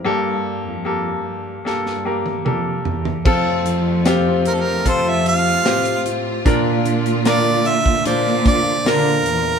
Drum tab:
CC |----------------|x---------------|----------------|
HH |----------------|--x-x-x-x-x-xxx-|x-xxx-x-x-x-x-x-|
SD |--------oo------|----o-------o---|----o----o--o---|
T1 |-----------o----|----------------|----------------|
T2 |------------o---|----------------|----------------|
FT |--------------oo|----------------|----------------|
BD |----------------|o-------o-------|o------o--o-----|